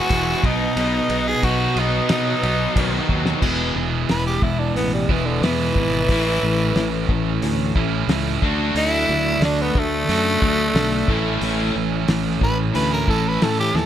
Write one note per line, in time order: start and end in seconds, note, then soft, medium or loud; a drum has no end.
0.00 0.41 G#3 medium
0.00 0.43 G#3 medium
0.00 0.41 B3 medium
0.00 1.10 B3 medium
0.00 1.74 B3 medium
0.00 0.41 E4 medium
0.00 0.43 E4 medium
0.00 0.47 F#4 loud
0.00 0.44 G#4 medium
0.00 0.41 B4 medium
0.10 0.33 E1 loud
0.10 0.44 E3 medium
0.10 0.44 E4 medium
0.10 kick medium
0.10 ride loud
0.43 0.67 B1 medium
0.43 0.76 B2 medium
0.43 0.75 B2 medium
0.43 3.40 F#3 medium
0.43 3.40 B3 medium
0.43 3.41 D#4 medium
0.43 1.29 D#4 medium
0.43 3.40 B4 medium
0.43 kick loud
0.43 ride medium
0.76 0.99 B1 medium
0.76 2.43 B2 medium
0.76 ride medium
1.10 1.33 B1 medium
1.10 2.08 B3 medium
1.10 ride medium
1.28 1.45 G#4 loud
1.43 1.66 B1 medium
1.43 3.09 D#4 medium
1.43 2.42 F#4 medium
1.43 1.81 F#4 medium
1.43 kick medium
1.43 ride medium
1.75 1.99 B1 medium
1.75 2.41 B3 medium
1.75 2.76 D#4 medium
1.75 ride medium
1.79 2.11 D#4 medium
2.09 2.33 B2 medium
2.09 3.08 F#3 medium
2.09 3.43 B3 medium
2.09 3.07 D#4 medium
2.09 snare loud
2.09 ride medium
2.42 2.66 B1 medium
2.42 3.43 B3 medium
2.42 3.08 F#4 medium
2.42 ride medium
2.76 2.99 B1 loud
2.76 3.41 D#3 medium
2.76 3.44 D#4 medium
2.76 kick medium
2.76 ride loud
3.09 3.32 D#2 medium
3.09 3.42 F#3 medium
3.09 3.43 F#4 medium
3.09 kick medium
3.26 snare medium
3.42 3.71 E1 medium
3.42 3.74 E2 medium
3.42 3.74 B2 medium
3.42 5.07 E3 medium
3.42 3.75 E3 medium
3.42 6.07 G#3 medium
3.42 5.07 G#3 medium
3.42 6.07 B3 medium
3.42 5.08 B3 medium
3.42 6.06 E4 medium
3.42 5.08 E4 medium
3.42 6.07 B4 medium
3.42 kick loud
3.42 crash loud
3.76 4.04 E1 medium
3.76 4.06 E2 medium
3.76 4.07 B2 medium
4.09 4.38 E1 medium
4.09 4.40 E2 medium
4.09 4.40 B2 medium
4.09 4.26 B4 medium
4.09 snare loud
4.09 open hi-hat medium
4.27 4.44 G4 medium
4.42 4.71 E1 medium
4.42 4.73 E2 medium
4.42 4.74 B2 medium
4.42 4.61 E4 medium
4.42 kick medium
4.59 4.75 D4 medium
4.75 5.04 A1 medium
4.75 5.07 E2 medium
4.75 5.07 B2 medium
4.75 4.92 B3 medium
4.75 open hi-hat medium
4.94 5.13 G3 medium
5.09 5.38 E1 medium
5.09 5.40 E2 medium
5.09 5.41 B2 medium
5.09 5.27 E3 medium
5.09 5.41 E3 medium
5.09 5.42 G#3 medium
5.09 5.41 B3 medium
5.09 5.41 E4 medium
5.09 kick medium
5.26 5.45 D3 medium
5.41 5.70 E2 medium
5.41 5.73 E2 medium
5.41 5.73 B2 medium
5.41 6.07 E3 medium
5.41 7.39 E3 loud
5.41 6.08 G#3 medium
5.41 6.08 B3 medium
5.41 snare loud
5.41 open hi-hat medium
5.46 6.09 E4 medium
5.76 6.04 G#1 medium
5.76 6.07 E2 medium
5.76 6.07 B2 medium
5.76 kick medium
6.09 6.38 A1 medium
6.09 7.74 A2 medium
6.09 6.42 A2 medium
6.09 8.40 E3 medium
6.09 7.74 E3 medium
6.09 6.42 E3 medium
6.09 8.41 A3 medium
6.09 7.77 A3 medium
6.09 6.42 A3 medium
6.09 8.40 C#4 medium
6.09 7.75 C#4 medium
6.09 7.74 E4 loud
6.09 8.40 A4 medium
6.09 kick loud
6.09 open hi-hat medium
6.43 6.71 A1 medium
6.43 6.73 A2 medium
6.43 6.73 E3 medium
6.75 7.04 A1 medium
6.75 7.07 A2 medium
6.75 7.07 E3 medium
6.75 snare loud
6.75 open hi-hat medium
7.09 7.37 A1 medium
7.09 7.40 A2 medium
7.09 7.40 E3 medium
7.09 kick medium
7.42 7.71 D2 medium
7.42 7.73 A2 medium
7.42 7.73 E3 medium
7.42 open hi-hat medium
7.76 8.04 A1 medium
7.76 8.06 A2 medium
7.76 8.08 A2 medium
7.76 8.07 E3 medium
7.76 8.09 E3 medium
7.76 8.10 A3 medium
7.76 8.08 C#4 medium
7.76 8.07 E4 medium
7.76 kick medium
8.08 8.37 C#2 medium
8.08 8.41 A2 medium
8.08 8.39 A2 medium
8.08 8.40 E3 medium
8.08 8.41 E3 medium
8.08 8.44 A3 medium
8.08 snare loud
8.08 open hi-hat medium
8.12 8.42 C#4 medium
8.12 8.42 E4 medium
8.42 8.71 D2 medium
8.42 8.74 D3 medium
8.42 10.07 D3 medium
8.42 11.06 F#3 medium
8.42 11.06 A3 medium
8.42 8.74 A3 loud
8.42 10.09 A3 medium
8.42 11.06 D4 medium
8.42 8.74 D4 medium
8.42 10.08 D4 medium
8.42 10.09 F#4 loud
8.42 11.06 A4 medium
8.42 kick medium
8.75 9.04 D2 medium
8.75 9.07 D3 medium
8.75 9.08 A3 loud
8.75 9.08 D4 medium
8.75 9.41 E4 loud
8.75 open hi-hat medium
9.09 9.37 D2 medium
9.09 9.40 D3 medium
9.09 9.40 A3 medium
9.41 9.70 D2 medium
9.41 9.73 D3 medium
9.41 9.73 A3 medium
9.41 9.63 D4 loud
9.41 snare medium
9.41 open hi-hat medium
9.62 9.80 B3 loud
9.75 10.04 D2 medium
9.75 10.06 D3 medium
9.75 10.06 A3 medium
9.75 11.73 A3 loud
9.75 kick medium
10.08 10.37 F#2 medium
10.08 10.40 D3 medium
10.08 10.39 D3 medium
10.08 10.40 A3 medium
10.08 10.39 A3 medium
10.08 10.41 D4 medium
10.08 10.40 F#4 medium
10.08 open hi-hat medium
10.41 10.71 D2 medium
10.41 10.72 D3 medium
10.41 11.08 D3 medium
10.41 10.72 A3 medium
10.41 11.08 A3 medium
10.41 11.07 D4 medium
10.41 11.06 F#4 medium
10.41 kick medium
10.75 11.03 B1 loud
10.75 11.06 D3 medium
10.75 11.06 A3 medium
10.75 snare loud
10.75 open hi-hat medium
11.07 11.37 A1 medium
11.07 11.40 A2 medium
11.07 12.73 A2 medium
11.07 11.40 E3 loud
11.07 12.75 E3 medium
11.07 13.86 A3 medium
11.07 11.40 A3 medium
11.07 12.74 A3 medium
11.07 13.86 C#4 medium
11.07 13.86 E4 medium
11.07 13.86 A4 medium
11.07 kick medium
11.11 12.74 C#4 loud
11.11 12.78 E4 loud
11.41 11.70 A1 medium
11.41 11.74 A2 medium
11.41 11.74 E3 medium
11.41 11.75 A3 medium
11.41 open hi-hat medium
11.76 12.04 A1 medium
11.76 12.05 A2 medium
11.76 12.06 E3 medium
12.08 12.37 A1 medium
12.08 12.39 A2 medium
12.08 12.39 E3 medium
12.08 snare loud
12.08 open hi-hat medium
12.41 12.70 A1 medium
12.41 12.72 A2 medium
12.41 12.72 E3 medium
12.41 12.58 B4 loud
12.41 kick medium
12.74 13.04 D2 loud
12.74 13.05 A2 medium
12.74 13.06 A2 medium
12.74 13.05 E3 medium
12.74 13.10 E3 medium
12.74 13.07 A3 medium
12.74 13.08 C#4 medium
12.74 12.91 B4 medium
12.74 open hi-hat medium
12.78 13.07 E4 medium
12.93 13.08 A#4 medium
13.07 13.37 A1 medium
13.07 13.38 A2 medium
13.07 13.74 A2 medium
13.07 13.39 E3 medium
13.07 13.86 E3 medium
13.07 13.74 A3 medium
13.07 13.73 C#4 medium
13.07 13.86 E4 medium
13.07 13.29 A4 medium
13.07 kick medium
13.28 13.45 B4 medium
13.42 13.72 A2 medium
13.42 13.70 A2 loud
13.42 13.72 E3 medium
13.42 13.58 A4 medium
13.42 snare loud
13.42 open hi-hat medium
13.60 13.78 G4 loud
13.74 13.86 D#2 medium
13.74 13.86 A2 medium
13.74 13.86 E3 medium
13.74 13.86 A4 medium
13.74 snare medium